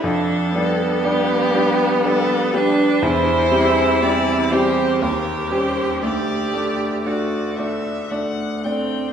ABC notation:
X:1
M:3/4
L:1/8
Q:1/4=59
K:G
V:1 name="Violin"
A2 G2 A B | c2 d c _B c | d2 d e f g |]
V:2 name="Cello"
D B,4 D | E3 G G2 | G2 F2 z C |]
V:3 name="Grand piano"
=F,, [G,DG] [G,DG] [G,DG] [G,DG] [G,DG] | E,, [G,CG] [G,CG] [G,CG] _E,, [G,_DG] | D,, [A,Dd] [A,Dd] [A,Dd] [A,Dd] [A,Dd] |]